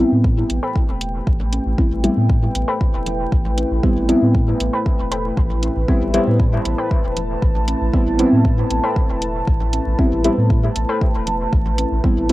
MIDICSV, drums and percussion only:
0, 0, Header, 1, 2, 480
1, 0, Start_track
1, 0, Key_signature, 0, "minor"
1, 0, Tempo, 512821
1, 1189, Time_signature, 4, 2, 24, 8
1, 11536, End_track
2, 0, Start_track
2, 0, Title_t, "Drums"
2, 228, Note_on_c, 9, 36, 120
2, 322, Note_off_c, 9, 36, 0
2, 467, Note_on_c, 9, 42, 88
2, 560, Note_off_c, 9, 42, 0
2, 708, Note_on_c, 9, 36, 103
2, 801, Note_off_c, 9, 36, 0
2, 946, Note_on_c, 9, 42, 86
2, 1040, Note_off_c, 9, 42, 0
2, 1188, Note_on_c, 9, 36, 127
2, 1282, Note_off_c, 9, 36, 0
2, 1309, Note_on_c, 9, 64, 96
2, 1402, Note_off_c, 9, 64, 0
2, 1427, Note_on_c, 9, 42, 84
2, 1427, Note_on_c, 9, 63, 82
2, 1520, Note_off_c, 9, 63, 0
2, 1521, Note_off_c, 9, 42, 0
2, 1668, Note_on_c, 9, 36, 112
2, 1762, Note_off_c, 9, 36, 0
2, 1908, Note_on_c, 9, 42, 86
2, 1908, Note_on_c, 9, 64, 80
2, 2001, Note_off_c, 9, 64, 0
2, 2002, Note_off_c, 9, 42, 0
2, 2148, Note_on_c, 9, 36, 126
2, 2242, Note_off_c, 9, 36, 0
2, 2388, Note_on_c, 9, 42, 88
2, 2481, Note_off_c, 9, 42, 0
2, 2628, Note_on_c, 9, 36, 104
2, 2722, Note_off_c, 9, 36, 0
2, 2867, Note_on_c, 9, 42, 90
2, 2868, Note_on_c, 9, 64, 94
2, 2961, Note_off_c, 9, 42, 0
2, 2961, Note_off_c, 9, 64, 0
2, 3108, Note_on_c, 9, 36, 126
2, 3202, Note_off_c, 9, 36, 0
2, 3230, Note_on_c, 9, 64, 94
2, 3323, Note_off_c, 9, 64, 0
2, 3348, Note_on_c, 9, 42, 88
2, 3348, Note_on_c, 9, 63, 83
2, 3441, Note_off_c, 9, 42, 0
2, 3442, Note_off_c, 9, 63, 0
2, 3589, Note_on_c, 9, 36, 112
2, 3682, Note_off_c, 9, 36, 0
2, 3827, Note_on_c, 9, 64, 81
2, 3828, Note_on_c, 9, 42, 87
2, 3921, Note_off_c, 9, 64, 0
2, 3922, Note_off_c, 9, 42, 0
2, 4068, Note_on_c, 9, 36, 122
2, 4162, Note_off_c, 9, 36, 0
2, 4308, Note_on_c, 9, 42, 87
2, 4402, Note_off_c, 9, 42, 0
2, 4548, Note_on_c, 9, 36, 100
2, 4642, Note_off_c, 9, 36, 0
2, 4788, Note_on_c, 9, 42, 85
2, 4882, Note_off_c, 9, 42, 0
2, 5028, Note_on_c, 9, 36, 120
2, 5122, Note_off_c, 9, 36, 0
2, 5149, Note_on_c, 9, 64, 89
2, 5242, Note_off_c, 9, 64, 0
2, 5266, Note_on_c, 9, 63, 81
2, 5268, Note_on_c, 9, 42, 82
2, 5360, Note_off_c, 9, 63, 0
2, 5361, Note_off_c, 9, 42, 0
2, 5508, Note_on_c, 9, 36, 105
2, 5601, Note_off_c, 9, 36, 0
2, 5746, Note_on_c, 9, 64, 80
2, 5747, Note_on_c, 9, 42, 84
2, 5839, Note_off_c, 9, 64, 0
2, 5841, Note_off_c, 9, 42, 0
2, 5987, Note_on_c, 9, 36, 116
2, 6081, Note_off_c, 9, 36, 0
2, 6228, Note_on_c, 9, 42, 81
2, 6321, Note_off_c, 9, 42, 0
2, 6467, Note_on_c, 9, 36, 97
2, 6561, Note_off_c, 9, 36, 0
2, 6707, Note_on_c, 9, 42, 83
2, 6707, Note_on_c, 9, 64, 91
2, 6800, Note_off_c, 9, 42, 0
2, 6801, Note_off_c, 9, 64, 0
2, 6947, Note_on_c, 9, 36, 118
2, 7041, Note_off_c, 9, 36, 0
2, 7068, Note_on_c, 9, 64, 87
2, 7161, Note_off_c, 9, 64, 0
2, 7187, Note_on_c, 9, 42, 84
2, 7187, Note_on_c, 9, 63, 78
2, 7280, Note_off_c, 9, 42, 0
2, 7281, Note_off_c, 9, 63, 0
2, 7427, Note_on_c, 9, 36, 104
2, 7521, Note_off_c, 9, 36, 0
2, 7666, Note_on_c, 9, 42, 81
2, 7667, Note_on_c, 9, 64, 78
2, 7760, Note_off_c, 9, 42, 0
2, 7761, Note_off_c, 9, 64, 0
2, 7907, Note_on_c, 9, 36, 118
2, 8001, Note_off_c, 9, 36, 0
2, 8147, Note_on_c, 9, 42, 82
2, 8241, Note_off_c, 9, 42, 0
2, 8388, Note_on_c, 9, 36, 100
2, 8481, Note_off_c, 9, 36, 0
2, 8627, Note_on_c, 9, 42, 80
2, 8721, Note_off_c, 9, 42, 0
2, 8868, Note_on_c, 9, 36, 115
2, 8962, Note_off_c, 9, 36, 0
2, 8989, Note_on_c, 9, 64, 92
2, 9083, Note_off_c, 9, 64, 0
2, 9108, Note_on_c, 9, 42, 81
2, 9108, Note_on_c, 9, 63, 77
2, 9201, Note_off_c, 9, 42, 0
2, 9202, Note_off_c, 9, 63, 0
2, 9348, Note_on_c, 9, 36, 98
2, 9442, Note_off_c, 9, 36, 0
2, 9588, Note_on_c, 9, 42, 78
2, 9588, Note_on_c, 9, 64, 80
2, 9682, Note_off_c, 9, 42, 0
2, 9682, Note_off_c, 9, 64, 0
2, 9829, Note_on_c, 9, 36, 109
2, 9922, Note_off_c, 9, 36, 0
2, 10068, Note_on_c, 9, 42, 83
2, 10162, Note_off_c, 9, 42, 0
2, 10309, Note_on_c, 9, 36, 97
2, 10403, Note_off_c, 9, 36, 0
2, 10548, Note_on_c, 9, 42, 80
2, 10549, Note_on_c, 9, 64, 93
2, 10642, Note_off_c, 9, 42, 0
2, 10642, Note_off_c, 9, 64, 0
2, 10789, Note_on_c, 9, 36, 121
2, 10883, Note_off_c, 9, 36, 0
2, 10911, Note_on_c, 9, 64, 93
2, 11004, Note_off_c, 9, 64, 0
2, 11028, Note_on_c, 9, 42, 84
2, 11028, Note_on_c, 9, 63, 80
2, 11121, Note_off_c, 9, 42, 0
2, 11122, Note_off_c, 9, 63, 0
2, 11269, Note_on_c, 9, 36, 101
2, 11362, Note_off_c, 9, 36, 0
2, 11507, Note_on_c, 9, 42, 81
2, 11536, Note_off_c, 9, 42, 0
2, 11536, End_track
0, 0, End_of_file